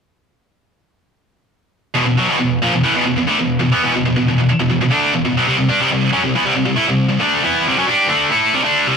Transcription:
1.95 distorted electric guitar E2 B2
2.06 distorted electric guitar E2 B2
2.18 distorted electric guitar B2 F#3
2.28 distorted electric guitar E2 B2
2.39 distorted electric guitar E2 B2
2.62 distorted electric guitar A#2 F3
2.74 distorted electric guitar E2 B2
2.83 distorted electric guitar A2 E3
2.95 distorted electric guitar E2 B2
3.05 distorted electric guitar E2 B2
3.17 distorted electric guitar E2 B2
3.27 distorted electric guitar D3 A3
3.39 distorted electric guitar E2 B2
3.59 distorted electric guitar E2 B2
3.72 distorted electric guitar E3 B3
3.83 distorted electric guitar E2 B2
3.95 distorted electric guitar E2 B2
4.05 distorted electric guitar E2 B2
4.16 distorted electric guitar E2 B2
4.28 distorted electric guitar E2 B2
4.38 distorted electric guitar E2 B2
4.49 muted distorted electric guitar stroke
4.60 distorted electric guitar E2 B2
4.70 distorted electric guitar E2 B2
4.81 distorted electric guitar E2 B2
4.91 distorted electric guitar D3 A3 D4
5.14 distorted electric guitar E2 B2
5.25 distorted electric guitar E2 B2
5.38 distorted electric guitar B2 F#3
5.47 distorted electric guitar C3 G3
5.58 distorted electric guitar C3 G3
5.69 distorted electric guitar G3 D4
5.80 distorted electric guitar C3 G3
5.91 distorted electric guitar C3 G3
6.13 distorted electric guitar F#3 C#4
6.24 distorted electric guitar C3 G3
6.36 distorted electric guitar E3 B3
6.46 distorted electric guitar C3 G3
6.56 distorted electric guitar C3 G3
6.66 distorted electric guitar C3 G3
6.76 distorted electric guitar A3 E4
6.87 distorted electric guitar C3 G3
7.09 distorted electric guitar C3 G3
7.19 distorted electric guitar D3 A3 D4
7.43 distorted electric guitar E3 B3 E4
7.67 distorted electric guitar C3 G3
7.77 distorted electric guitar F#3 C#4
7.87 distorted electric guitar G3 D4 G4
8.08 distorted electric guitar D3 A3 D4
8.31 distorted electric guitar A3 E4 A4
8.54 distorted electric guitar C3 G3
8.64 distorted electric guitar D3 A3 D4
8.87 distorted electric guitar C3 G3

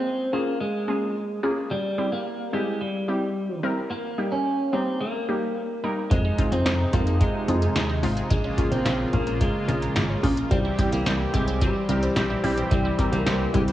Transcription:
Already playing: clean electric guitar C4
0.33 clean electric guitar A#3, synth pluck A#3 C#4 F4 G#4
0.60 clean electric guitar G#3
0.88 synth pluck A#3 C#4 F4 G#4
1.43 synth pluck A#3 C#4 F4 G#4
1.71 clean electric guitar G3
1.98 synth pluck G3 C4 E4 G4
2.12 clean electric guitar A#3
2.53 synth pluck G3 C4 E4 G4, clean electric guitar G#3
2.81 clean electric guitar G3
3.08 synth pluck G3 C4 E4 G4
3.63 synth pluck G3 C4 E4 A#4
3.91 clean electric guitar A#3
4.18 synth pluck G3 A#3 D#4 G4
4.32 clean electric guitar C#4
4.73 synth pluck G3 A#3 D#4 G4, clean electric guitar C4
5.01 clean electric guitar A#3
5.28 synth pluck G3 A#3 D#4 G4
5.83 synth pluck G3 A#3 D#4 A#4
6.11 fm bass F2, analog synth pad C3 F3 G#3 D#4, clean electric guitar G#3, synth arpeggio sound G#3, kick, closed hi-hat
6.25 synth arpeggio sound D#4
6.38 synth pluck G#3 C4 D#4 F4, synth arpeggio sound F4, kick, closed hi-hat
6.52 fm bass F2, clean electric guitar C4, synth arpeggio sound G#4, closed hi-hat
6.66 fm bass F2, synth arpeggio sound G#3, snare, closed hi-hat
6.93 fm bass F2, synth pluck G#3 C4 D#4 F4, clean electric guitar A#3, synth arpeggio sound F4, kick, closed hi-hat
7.07 synth arpeggio sound G#4, closed hi-hat
7.21 clean electric guitar G#3, synth arpeggio sound G#3, kick, closed hi-hat
7.48 fm bass F2, synth pluck G#3 C4 D#4 F4, synth arpeggio sound F4, closed hi-hat
7.62 synth arpeggio sound G#4, closed hi-hat
7.76 fm bass D#2, synth arpeggio sound G#3, snare, closed hi-hat
7.90 synth arpeggio sound D#4
8.03 fm bass G#1, synth pluck G#3 C4 D#4 F4, synth arpeggio sound F4, open hi-hat
8.17 synth arpeggio sound G#4, closed hi-hat
8.31 fm bass A#1, analog synth pad C#3 A#3 F4, clean electric guitar G#3, synth arpeggio sound A#3, kick, closed hi-hat
8.45 synth arpeggio sound C#4
8.58 synth pluck G#3 A#3 C#4 F4, synth arpeggio sound G#4, kick, closed hi-hat
8.72 fm bass A#1, clean electric guitar C4, synth arpeggio sound A#4, closed hi-hat
8.86 fm bass A#1, synth arpeggio sound A#3, snare, closed hi-hat
9.13 fm bass A#1, synth pluck G#3 A#3 C#4 F4, clean electric guitar A#3, synth arpeggio sound G#4, kick, closed hi-hat
9.27 synth arpeggio sound A#4, closed hi-hat
9.41 clean electric guitar G#3, synth arpeggio sound A#3, kick, closed hi-hat
9.69 fm bass A#1, synth pluck G#3 A#3 C#4 F4, synth arpeggio sound G#4, closed hi-hat
9.82 synth arpeggio sound A#4, closed hi-hat
9.96 fm bass G#1, synth arpeggio sound A#3, snare, closed hi-hat
10.10 synth arpeggio sound C#4
10.23 fm bass A#1, synth pluck G#3 A#3 C#4 F4, synth arpeggio sound G#4, kick, open hi-hat
10.37 synth arpeggio sound A#4, closed hi-hat
10.51 fm bass C2, analog synth pad E3 G3 C4 G4, clean electric guitar G3, synth arpeggio sound C4, kick, closed hi-hat
10.65 synth arpeggio sound E4
10.79 synth pluck G3 C4 E4 G4, synth arpeggio sound G4, kick, closed hi-hat
10.92 fm bass C2, clean electric guitar A#3, synth arpeggio sound C5, closed hi-hat
11.06 fm bass C2, synth arpeggio sound C4, snare, closed hi-hat
11.34 fm bass C2, synth pluck G3 C4 E4 G4, clean electric guitar G#3, synth arpeggio sound G4, kick, closed hi-hat
11.47 synth arpeggio sound C5, closed hi-hat
11.61 clean electric guitar G3, synth arpeggio sound C4, kick, closed hi-hat
11.89 fm bass C2, synth pluck G3 C4 E4 A#4, synth arpeggio sound G4, closed hi-hat
12.03 synth arpeggio sound C5, closed hi-hat
12.16 fm bass A#1, synth arpeggio sound C4, snare, closed hi-hat
12.30 synth arpeggio sound E4
12.44 fm bass A#1, synth pluck G3 C4 E4 G4, synth arpeggio sound G4, open hi-hat
12.58 synth arpeggio sound C5, closed hi-hat
12.71 fm bass C2, clean electric guitar G3, synth arpeggio sound C4, kick, closed hi-hat
12.85 synth arpeggio sound E4
12.99 synth pluck G3 C4 E4 A#4, synth arpeggio sound G4, kick, closed hi-hat
13.12 fm bass C2, clean electric guitar A#3, synth arpeggio sound C5, closed hi-hat
13.26 fm bass C2, synth arpeggio sound C4, snare, closed hi-hat
13.54 fm bass C2, synth pluck G3 C4 E4 G4, clean electric guitar G#3, synth arpeggio sound G4, kick, closed hi-hat
13.68 synth arpeggio sound C5, closed hi-hat

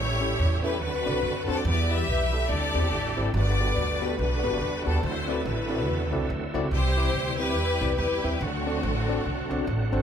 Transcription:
Already playing: upright bass A1, tine electric piano A2, tonewheel organ E3 G3 A3 C#4 G4, string section E4 G4 C#5
0.21 tine electric piano C#4 E4 G4 A4 E5
0.39 upright bass E2
0.63 tine electric piano C#4 E4 G4 A4 E5, string section B4
0.81 upright bass D2, tonewheel organ D3 F#3 C4 F#4, tine electric piano D3, string section F#4 B4
1.06 upright bass C2, tine electric piano C4 D4 F#4 A4 D5
1.23 upright bass F#2
1.48 upright bass F2, tine electric piano C4 D4 F#4 A4 C5, string section A4
1.57 string section D5
1.65 upright bass E2, tine electric piano E3, tonewheel organ G3 B3 E4, string section G4 B4 D5
1.91 tine electric piano E4 G4 B4, string section G4 B4 E5
2.07 upright bass B1
2.33 tine electric piano E4 G4 A4
2.49 upright bass D2, tine electric piano D3, tonewheel organ D3 A3 C4, string section G4 A4 D5
2.75 upright bass E2, tine electric piano C4 E4 G4 A4 D5
2.91 upright bass A1
3.17 upright bass G#1, tine electric piano C4 E4 G4 A4 D5
3.34 upright bass G1, tine electric piano G2, tonewheel organ B3 F#4, string section F#4 B4 D5
3.60 tine electric piano B3 F#4 G4 A4 D5
3.76 upright bass D2
4.02 tine electric piano B3 F#4 G4 A4 D5, string section B4
4.19 upright bass B1, string section D4 F#4 B4
4.43 upright bass F#1, tine electric piano B3 F#4 G4 A4 B4
4.61 upright bass E2
4.86 upright bass D#2, tine electric piano B3 F#4 G4 A4 B4, string section A4
5.03 upright bass D2, tine electric piano D3, tonewheel organ F#3 C4 E4, string section E4 F#4 C5
5.28 tine electric piano C4 E4 F#4 A4 D5, string section B4
5.45 upright bass A1, string section E4 F#4 B4
5.70 tine electric piano C4 E4 F#4 A4 D5
5.87 upright bass E2
6.12 upright bass C2, tine electric piano C4 E4 F#4 A4 D5
6.30 upright bass D2
6.54 upright bass C#2, tine electric piano C4 E4 F#4 A4 D5
6.71 upright bass C2, tine electric piano C3, tonewheel organ E3 G3 G4, string section E4 G4 C5
6.96 tine electric piano C4 E4 G4 B4 E5
7.14 upright bass D2
7.39 tine electric piano C4 E4 G4 B4 E5, string section E4 G4 B4
7.56 upright bass E2
7.81 upright bass C2, tine electric piano C4 E4 G4 B4 D5
7.98 upright bass E2, string section E4 G4 B4
8.24 upright bass D#2, tine electric piano C4 E4 G4 B4 E5
8.41 upright bass D2, tonewheel organ D3 F#3 A3 F#4, tine electric piano D3, string section A3 C4 F#4
8.66 tine electric piano C4 D4 F#4 A4 D5
8.83 upright bass A1
9.08 tine electric piano C4 D4 F#4 A4 D5
9.25 upright bass C2
9.50 upright bass B1, tine electric piano C4 D4 F#4 A4 D5
9.67 upright bass A1
9.92 upright bass G#1, tine electric piano C4 D4 F#4 A4 C5

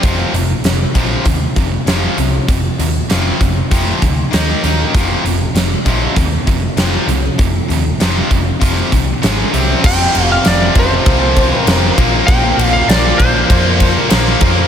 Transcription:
0.03 picked electric bass F1, distorted electric guitar F2 C3 F3, kick, closed hi-hat
0.33 picked electric bass F1, distorted electric guitar F2 C3, closed hi-hat
0.64 picked electric bass F1, distorted electric guitar F2 C3, snare, closed hi-hat
0.95 picked electric bass A#1, distorted electric guitar F2 C3 F3, kick, closed hi-hat
1.25 picked electric bass D#2, distorted electric guitar F2 C3, kick, closed hi-hat
1.56 picked electric bass F1, distorted electric guitar F2 C3, kick, closed hi-hat
1.86 picked electric bass F1, distorted electric guitar F2 C3 F3, snare, closed hi-hat
2.18 picked electric bass C2, distorted electric guitar F2 C3, closed hi-hat
2.48 picked electric bass F1, distorted electric guitar F2 C3, kick, closed hi-hat
2.79 picked electric bass D#2, distorted electric guitar F2 C3, closed hi-hat
3.10 picked electric bass F1, distorted electric guitar F2 C3 F3, snare, closed hi-hat
3.40 picked electric bass F1, distorted electric guitar F2 C3, kick, closed hi-hat
3.71 picked electric bass F1, distorted electric guitar F2 C3 F3, kick, closed hi-hat
4.02 picked electric bass D2, distorted electric guitar F2 C3, kick, closed hi-hat
4.33 picked electric bass D#2, distorted electric guitar D#3 A#3 D#4, snare, closed hi-hat
4.63 picked electric bass D#2, distorted electric guitar D#3 A#3 D#4, closed hi-hat
4.94 picked electric bass F1, distorted electric guitar F2 C3 F3, kick, closed hi-hat
5.24 picked electric bass F1, distorted electric guitar F2 C3, closed hi-hat
5.54 picked electric bass F1, distorted electric guitar F2, snare, closed hi-hat
5.58 distorted electric guitar C3
5.86 picked electric bass A#1, distorted electric guitar F2 C3 F3, kick, closed hi-hat
6.16 picked electric bass D#2, distorted electric guitar F2 C3, kick, closed hi-hat
6.47 picked electric bass F1, distorted electric guitar F2 C3, kick, closed hi-hat
6.76 picked electric bass F1, distorted electric guitar F2 C3 F3, snare, closed hi-hat
7.07 picked electric bass C2, distorted electric guitar F2 C3, closed hi-hat
7.39 picked electric bass F1, distorted electric guitar F2 C3, kick, closed hi-hat
7.69 picked electric bass D#2, distorted electric guitar F2 C3, closed hi-hat
8.00 picked electric bass F1, distorted electric guitar F2 C3 F3, snare, closed hi-hat
8.30 picked electric bass F1, distorted electric guitar F2 C3, kick, closed hi-hat
8.62 picked electric bass F1, distorted electric guitar F2 C3 F3, kick, closed hi-hat
8.92 picked electric bass C2, distorted electric guitar F2 C3, kick, closed hi-hat
9.22 picked electric bass G#1, distorted electric guitar G#2 D#3 G#3, snare, closed hi-hat
9.53 picked electric bass C2, distorted electric guitar C3 G3 C4, closed hi-hat
9.83 picked electric bass F1, distorted electric guitar F2 C3 F3, tonewheel organ F3 C4 G4, lead electric guitar G5, kick, crash
10.15 picked electric bass F1, ride
10.32 lead electric guitar F5
10.45 picked electric bass F1, distorted electric guitar F2 C3 F3, lead electric guitar D5, snare, ride
10.75 picked electric bass F1, distorted electric guitar F2 C3 F3, kick, ride
10.79 lead electric guitar C5
11.06 picked electric bass C2, distorted electric guitar F2 C3 F3, kick, ride
11.36 kick, ride
11.58 lead electric guitar A#4
11.67 picked electric bass F1, distorted electric guitar F2 C3 F3, snare, ride
11.95 picked electric bass A#1, distorted electric guitar A#2 F3, tonewheel organ A#3 F4 C5, kick, ride
11.99 distorted electric guitar A#3
12.27 picked electric bass A#1, distorted electric guitar A#2 F3, lead electric guitar G5, kick, ride
12.32 distorted electric guitar A#3
12.57 picked electric bass A#1, ride
12.73 lead electric guitar F5
12.88 picked electric bass A#1, distorted electric guitar A#2 F3 A#3, lead electric guitar D5, snare, ride
13.18 picked electric bass A#1, distorted electric guitar A#2 F3 A#3, lead electric guitar C5, kick, ride
13.50 picked electric bass F2, distorted electric guitar A#2 F3 A#3, kick, ride
13.80 kick, ride
13.99 lead electric guitar A#4
14.10 picked electric bass A#1, distorted electric guitar A#2 F3 A#3, snare, ride
14.41 picked electric bass F2, distorted electric guitar A#2 F3 A#3, kick, ride

